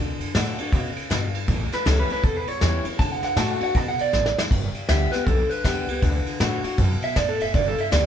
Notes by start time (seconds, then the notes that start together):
Already playing: D2 D3
0.20 F#2, ride
0.35 A2 D3 A3 D4 F#4, snare, ride
0.58 D4 F#4, muted upright bass stroke, ride
0.72 B2 C#3, kick, ride
0.96 muted upright bass stroke, ride
1.10 G2 B2, snare, ride
1.34 muted upright bass stroke, ride
1.48 A1 A2, kick, ride
1.72 B4, snare, ride
1.86 C#2 E3 G3 C#4 E4 A4, snare, ride
2.00 B4
2.09 C#4 E4 B4, ride
2.24 E2 A4, kick, ride
2.37 B4
2.47 G2 C#5, ride
2.61 E2 E3 G3 C#4 E4, snare, ride
2.85 C#4 E4, muted upright bass stroke, ride
2.99 D2 D3 A5, kick, snare, ride
3.12 F#5
3.22 F#2 F#5, snare, ride
3.36 A2 D3 A3 D4 F#4 A5, snare, ride
3.50 F#5
3.61 D4 F#4 F#5, muted upright bass stroke, ride
3.75 B2 A5, kick, ride
3.88 F#5
3.99 D5, muted upright bass stroke, ride
4.13 A1 A2, snare
4.26 snare
4.38 snare
4.51 G1 G2, kick, crash
4.75 muted upright bass stroke, ride
4.89 D2 D3 G3 B3 G4 E5, snare, ride
5.12 B3 G4 B4, muted upright bass stroke, snare, ride
5.27 B1 D3 A4, kick, ride
5.50 B4, ride
5.65 D2 D3 G3 B3 G4, kick, snare, ride
5.87 C#2 B3 G4, ride
6.02 D2 D3, kick, ride
6.25 muted upright bass stroke, ride
6.40 A2 D3 A3 D4 F#4, snare, ride
6.64 D4 F#4, muted upright bass stroke, ride
6.78 F#2 B2, kick, ride
7.02 E5, muted upright bass stroke, ride
7.16 A2 D5, kick, snare, ride
7.29 A4
7.40 F#1 E5, ride
7.54 G1 G2 D5, kick, ride
7.68 A4
7.78 E5, muted upright bass stroke, ride
7.91 D2 D3 G3 B3 G4 D5, snare, ride